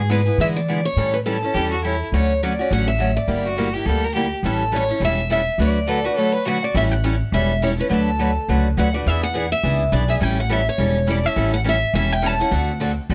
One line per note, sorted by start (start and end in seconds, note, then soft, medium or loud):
0.00 0.27 G#2 medium
0.00 0.11 G#4 medium
0.09 0.20 D3 medium
0.09 0.20 G#3 medium
0.09 0.20 B3 medium
0.09 0.20 E4 medium
0.09 0.21 G#4 medium
0.09 0.38 B4 medium
0.25 0.39 B3 soft
0.25 0.38 E4 soft
0.25 0.38 G#4 soft
0.38 0.58 D3 medium
0.38 0.85 E3 medium
0.38 0.58 G#3 medium
0.38 0.58 B3 medium
0.38 0.58 E4 medium
0.38 0.58 G#4 medium
0.38 0.46 E5 medium
0.56 0.83 D5 medium
0.68 0.78 D3 medium
0.68 0.79 G#3 medium
0.68 0.79 B3 medium
0.68 0.79 E4 medium
0.68 0.79 G#4 medium
0.85 1.15 C#5 medium
0.96 1.43 A2 medium
0.96 1.16 E3 medium
0.96 1.16 G3 medium
0.96 1.16 C#4 medium
0.96 1.16 E4 medium
0.96 1.16 A4 medium
1.14 1.19 B4 medium
1.26 1.36 E3 medium
1.26 1.36 G3 medium
1.26 1.36 C#4 medium
1.26 1.36 E4 medium
1.26 1.96 A4 medium
1.26 1.37 A4 medium
1.43 1.54 C#4 soft
1.43 1.54 E4 soft
1.43 1.54 A4 medium
1.54 2.01 E2 medium
1.54 1.73 E3 medium
1.54 1.74 G3 soft
1.54 1.74 C#4 medium
1.54 1.74 E4 medium
1.54 1.70 G4 medium
1.54 1.74 A4 medium
1.71 1.82 F#4 medium
1.84 1.94 E3 medium
1.84 1.94 G3 medium
1.84 1.94 C#4 medium
1.84 2.05 E4 medium
1.84 1.95 E4 medium
1.84 1.95 A4 medium
2.12 2.58 D2 medium
2.12 2.32 D3 medium
2.12 2.32 F#3 medium
2.12 2.32 A3 medium
2.12 2.32 C#4 medium
2.12 2.32 F#4 medium
2.12 2.43 C#5 medium
2.43 2.52 D3 medium
2.43 2.52 F#3 medium
2.43 2.52 A3 medium
2.43 2.52 C#4 medium
2.43 2.53 F#4 medium
2.43 2.69 D5 medium
2.59 2.70 A3 soft
2.59 2.70 C#4 soft
2.59 2.70 F#4 soft
2.70 3.17 A1 medium
2.70 2.89 D3 medium
2.70 2.89 F#3 medium
2.70 2.89 A3 medium
2.70 2.89 C#4 medium
2.70 2.90 F#4 medium
2.70 2.87 F#5 medium
2.88 3.16 E5 medium
2.99 3.09 D3 medium
2.99 3.10 F#3 medium
2.99 3.10 A3 medium
2.99 3.10 C#4 medium
2.99 3.10 F#4 medium
3.17 3.54 D5 medium
3.27 3.74 G1 medium
3.27 3.46 D3 medium
3.27 3.46 G3 medium
3.27 3.47 A#3 medium
3.27 3.47 E4 medium
3.27 3.47 G4 medium
3.45 3.75 F#4 medium
3.57 3.67 D3 medium
3.57 3.68 G3 medium
3.57 3.68 A#3 medium
3.57 3.68 E4 medium
3.57 3.68 G4 medium
3.73 3.87 A#3 soft
3.73 3.86 E4 soft
3.73 3.87 G4 medium
3.73 3.86 G4 medium
3.86 4.32 D2 medium
3.86 4.05 D3 medium
3.86 4.05 G3 medium
3.86 4.06 A#3 medium
3.86 4.06 E4 medium
3.86 4.06 G4 medium
3.86 4.06 A4 medium
4.04 4.14 A#4 medium
4.14 4.25 D3 medium
4.14 4.25 G3 medium
4.14 4.26 A#3 medium
4.14 4.26 E4 medium
4.14 4.36 G4 medium
4.14 4.26 G4 medium
4.43 4.89 A1 medium
4.43 4.62 E3 medium
4.43 4.63 G3 medium
4.43 4.63 C#4 medium
4.43 4.63 E4 medium
4.43 4.63 A4 medium
4.43 4.72 A4 medium
4.72 4.82 E3 medium
4.72 4.83 G3 medium
4.72 4.83 C#4 medium
4.72 4.83 E4 medium
4.72 4.83 A4 medium
4.76 5.04 C#5 medium
4.89 5.00 C#4 soft
4.89 5.00 E4 soft
4.89 5.01 A4 medium
5.00 5.47 E1 medium
5.00 5.20 E3 medium
5.00 5.20 G3 medium
5.00 5.20 C#4 medium
5.00 5.20 E4 medium
5.00 5.20 A4 medium
5.05 5.30 E5 medium
5.30 5.40 E3 medium
5.30 5.40 G3 medium
5.30 5.41 C#4 medium
5.30 5.41 E4 medium
5.30 5.41 A4 medium
5.30 5.58 E5 medium
5.58 6.05 D2 medium
5.58 5.78 D3 medium
5.58 5.78 F#3 medium
5.58 5.78 A3 medium
5.58 5.78 D4 medium
5.58 5.78 F#4 medium
5.58 5.78 B4 medium
5.58 6.17 D5 medium
5.87 5.98 D3 medium
5.87 5.98 F#3 medium
5.87 5.98 A3 medium
5.87 5.98 D4 medium
5.87 5.99 F#4 medium
5.87 6.07 A4 medium
5.87 5.99 B4 medium
6.04 6.16 A3 soft
6.04 6.17 D4 soft
6.04 6.15 F#4 medium
6.04 6.17 F#4 soft
6.04 6.16 B4 medium
6.15 6.36 D3 medium
6.15 6.36 F#3 soft
6.15 6.36 A3 medium
6.15 6.36 D4 medium
6.15 6.36 F#4 medium
6.15 6.34 A4 medium
6.15 6.36 B4 medium
6.15 6.43 C#5 medium
6.33 6.47 B4 medium
6.45 6.56 D3 medium
6.45 6.56 F#3 medium
6.45 6.57 A3 medium
6.45 6.57 D4 medium
6.45 6.74 F#4 medium
6.45 6.57 F#4 medium
6.45 6.57 B4 medium
6.45 6.62 F#5 medium
6.64 6.75 D5 medium
6.74 7.21 A1 medium
6.74 6.93 E3 medium
6.74 6.93 G3 medium
6.74 6.94 C#4 medium
6.74 6.94 E4 medium
6.74 6.94 A4 medium
6.74 6.82 E5 medium
6.91 7.33 F#5 medium
7.04 7.14 E3 medium
7.04 7.14 G3 medium
7.04 7.14 C#4 medium
7.04 7.14 E4 medium
7.04 7.15 A4 medium
7.32 7.78 E1 medium
7.32 7.51 E3 medium
7.32 7.52 G3 medium
7.32 7.52 C#4 medium
7.32 7.52 E4 medium
7.32 7.52 A4 medium
7.32 7.63 E5 medium
7.62 7.72 E3 medium
7.62 7.72 G3 medium
7.62 7.72 C#4 medium
7.62 7.73 E4 medium
7.62 7.72 A4 medium
7.62 7.68 C#5 medium
7.77 7.90 C#4 soft
7.77 7.90 E4 soft
7.77 7.89 A4 medium
7.77 7.85 B4 medium
7.89 8.37 D2 medium
7.89 8.08 D3 medium
7.89 8.09 F#3 medium
7.89 8.09 A3 medium
7.89 8.09 D4 medium
7.89 8.09 F#4 medium
7.89 8.09 B4 medium
7.93 8.49 A4 medium
8.19 8.29 D3 medium
8.19 8.30 F#3 medium
8.19 8.30 A3 medium
8.19 8.30 D4 medium
8.19 8.30 F#4 medium
8.19 8.30 B4 medium
8.48 8.73 C#2 medium
8.48 8.67 D3 medium
8.48 8.67 F#3 medium
8.48 8.67 A3 medium
8.48 8.67 D4 medium
8.48 8.67 F#4 medium
8.48 8.67 B4 medium
8.77 9.01 D2 medium
8.77 8.87 D3 medium
8.77 8.87 F#3 medium
8.77 8.88 A3 medium
8.77 8.88 D4 medium
8.77 8.88 F#4 medium
8.77 8.88 B4 medium
8.77 8.93 F#5 medium
8.94 9.06 A3 soft
8.94 9.06 D4 soft
8.94 9.06 F#4 medium
8.94 9.06 B4 soft
8.94 9.08 D5 medium
9.06 9.52 E2 medium
9.06 9.25 E3 medium
9.06 9.25 B3 medium
9.06 9.25 D4 medium
9.06 9.25 G#4 medium
9.06 9.23 E5 medium
9.23 9.52 F#5 medium
9.34 9.45 E3 medium
9.34 9.45 B3 medium
9.34 9.45 D4 medium
9.34 9.45 G#4 loud
9.52 9.94 E5 medium
9.63 9.88 C#2 medium
9.63 9.82 E3 medium
9.63 9.82 B3 medium
9.63 9.82 D4 medium
9.63 9.82 G#4 medium
9.92 10.17 B1 medium
9.92 10.02 E3 medium
9.92 10.02 B3 medium
9.92 10.03 D4 medium
9.92 10.03 G#4 medium
9.92 10.08 D5 medium
10.08 10.21 B3 soft
10.08 10.21 D4 medium
10.08 10.20 G#4 medium
10.08 10.15 E5 medium
10.20 10.67 A1 medium
10.20 10.39 E3 medium
10.20 10.39 G3 medium
10.20 10.40 C#4 medium
10.20 10.40 E4 medium
10.20 10.40 A4 medium
10.20 10.38 G5 medium
10.40 10.51 F#5 medium
10.49 10.60 E3 medium
10.49 10.60 G3 medium
10.49 10.60 C#4 medium
10.49 10.60 E4 medium
10.49 10.60 A4 medium
10.49 10.67 E5 medium
10.69 11.10 C#5 medium
10.78 11.25 E1 medium
10.78 10.97 E3 medium
10.78 10.97 G3 medium
10.78 10.98 C#4 medium
10.78 10.98 E4 medium
10.78 10.98 A4 medium
11.07 11.17 E3 medium
11.07 11.18 G3 medium
11.07 11.18 C#4 medium
11.07 11.18 E4 medium
11.07 11.18 A4 medium
11.07 11.26 D5 medium
11.24 11.35 C#4 soft
11.24 11.36 E4 soft
11.24 11.36 A4 soft
11.24 11.53 E5 medium
11.36 11.83 A1 medium
11.36 11.55 E3 medium
11.36 11.55 G3 medium
11.36 11.55 C#4 medium
11.36 11.55 E4 medium
11.36 11.55 A4 medium
11.54 11.59 F#5 medium
11.64 11.75 E3 medium
11.64 11.75 G3 medium
11.64 11.75 C#4 medium
11.64 11.76 E4 medium
11.64 11.76 A4 medium
11.69 11.94 E5 medium
11.94 12.40 E1 medium
11.94 12.13 E3 medium
11.94 12.13 G3 medium
11.94 12.13 C#4 medium
11.94 12.13 E4 medium
11.94 12.13 A4 medium
11.94 12.12 E5 medium
12.12 12.26 G5 medium
12.22 12.33 E3 medium
12.22 12.33 G3 medium
12.22 12.33 C#4 medium
12.22 12.33 E4 medium
12.22 12.33 A4 medium
12.26 12.41 A5 loud
12.38 12.52 C#4 soft
12.38 12.51 E4 soft
12.38 12.51 A4 medium
12.38 12.94 F#5 medium
12.51 12.98 D2 medium
12.51 12.70 D3 medium
12.51 12.71 A3 medium
12.51 12.71 C4 medium
12.51 12.70 F#4 medium
12.51 12.71 A4 medium
12.80 12.91 D3 medium
12.80 12.91 A3 medium
12.80 12.91 C4 medium
12.80 12.91 F#4 medium
12.80 12.91 A4 medium
13.10 13.14 A1 medium
13.10 13.14 D3 medium
13.10 13.14 A3 medium
13.10 13.14 C4 medium
13.10 13.14 F#4 medium
13.10 13.14 A4 medium